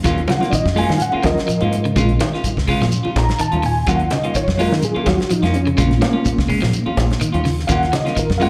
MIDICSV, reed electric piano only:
0, 0, Header, 1, 2, 480
1, 0, Start_track
1, 0, Key_signature, -6, "minor"
1, 0, Tempo, 477327
1, 58, Time_signature, 4, 2, 24, 8
1, 8542, End_track
2, 0, Start_track
2, 0, Title_t, "Reed electric piano"
2, 0, Program_c, 0, 4
2, 283, Note_on_c, 0, 54, 46
2, 290, Note_on_c, 0, 61, 45
2, 294, Note_on_c, 0, 65, 57
2, 310, Note_on_c, 0, 78, 74
2, 505, Note_on_c, 0, 74, 61
2, 536, Note_off_c, 0, 74, 0
2, 537, Note_off_c, 0, 78, 0
2, 550, Note_on_c, 0, 75, 100
2, 777, Note_off_c, 0, 75, 0
2, 790, Note_on_c, 0, 80, 95
2, 974, Note_off_c, 0, 54, 0
2, 978, Note_off_c, 0, 61, 0
2, 980, Note_off_c, 0, 65, 0
2, 980, Note_on_c, 0, 77, 61
2, 1013, Note_off_c, 0, 77, 0
2, 1017, Note_off_c, 0, 80, 0
2, 1025, Note_on_c, 0, 78, 85
2, 1246, Note_on_c, 0, 54, 47
2, 1249, Note_on_c, 0, 61, 46
2, 1255, Note_off_c, 0, 78, 0
2, 1255, Note_on_c, 0, 65, 50
2, 1265, Note_on_c, 0, 70, 96
2, 1271, Note_on_c, 0, 75, 109
2, 1468, Note_off_c, 0, 54, 0
2, 1469, Note_off_c, 0, 61, 0
2, 1473, Note_off_c, 0, 65, 0
2, 1965, Note_on_c, 0, 56, 52
2, 1972, Note_on_c, 0, 61, 48
2, 1976, Note_on_c, 0, 65, 59
2, 2297, Note_off_c, 0, 56, 0
2, 2301, Note_off_c, 0, 61, 0
2, 2303, Note_off_c, 0, 65, 0
2, 2661, Note_off_c, 0, 70, 0
2, 2664, Note_off_c, 0, 75, 0
2, 3203, Note_on_c, 0, 82, 89
2, 3423, Note_off_c, 0, 82, 0
2, 3429, Note_on_c, 0, 81, 92
2, 3656, Note_off_c, 0, 81, 0
2, 3680, Note_on_c, 0, 80, 90
2, 3902, Note_off_c, 0, 80, 0
2, 3911, Note_on_c, 0, 78, 91
2, 4137, Note_off_c, 0, 78, 0
2, 4144, Note_on_c, 0, 75, 85
2, 4374, Note_off_c, 0, 75, 0
2, 4385, Note_on_c, 0, 73, 95
2, 4612, Note_on_c, 0, 54, 52
2, 4613, Note_on_c, 0, 61, 49
2, 4614, Note_off_c, 0, 73, 0
2, 4622, Note_on_c, 0, 65, 60
2, 4638, Note_on_c, 0, 70, 94
2, 4860, Note_off_c, 0, 70, 0
2, 4874, Note_on_c, 0, 68, 89
2, 5099, Note_off_c, 0, 68, 0
2, 5116, Note_on_c, 0, 66, 83
2, 5298, Note_off_c, 0, 54, 0
2, 5299, Note_off_c, 0, 61, 0
2, 5304, Note_off_c, 0, 65, 0
2, 5340, Note_off_c, 0, 66, 0
2, 5357, Note_on_c, 0, 63, 92
2, 5580, Note_off_c, 0, 63, 0
2, 5591, Note_on_c, 0, 61, 96
2, 5801, Note_off_c, 0, 61, 0
2, 5809, Note_on_c, 0, 56, 54
2, 5813, Note_on_c, 0, 61, 45
2, 5818, Note_on_c, 0, 65, 56
2, 5841, Note_on_c, 0, 58, 87
2, 6035, Note_on_c, 0, 57, 67
2, 6062, Note_off_c, 0, 58, 0
2, 6064, Note_off_c, 0, 57, 0
2, 6079, Note_on_c, 0, 58, 96
2, 6497, Note_off_c, 0, 56, 0
2, 6499, Note_off_c, 0, 61, 0
2, 6501, Note_off_c, 0, 65, 0
2, 7468, Note_off_c, 0, 58, 0
2, 7716, Note_on_c, 0, 77, 74
2, 7745, Note_off_c, 0, 77, 0
2, 7764, Note_on_c, 0, 78, 111
2, 7983, Note_off_c, 0, 78, 0
2, 7997, Note_on_c, 0, 75, 89
2, 8220, Note_off_c, 0, 75, 0
2, 8236, Note_on_c, 0, 70, 85
2, 8426, Note_on_c, 0, 77, 77
2, 8447, Note_on_c, 0, 54, 60
2, 8455, Note_on_c, 0, 61, 53
2, 8457, Note_off_c, 0, 77, 0
2, 8458, Note_on_c, 0, 65, 58
2, 8460, Note_off_c, 0, 70, 0
2, 8473, Note_on_c, 0, 78, 110
2, 8542, Note_off_c, 0, 54, 0
2, 8542, Note_off_c, 0, 61, 0
2, 8542, Note_off_c, 0, 65, 0
2, 8542, Note_off_c, 0, 78, 0
2, 8542, End_track
0, 0, End_of_file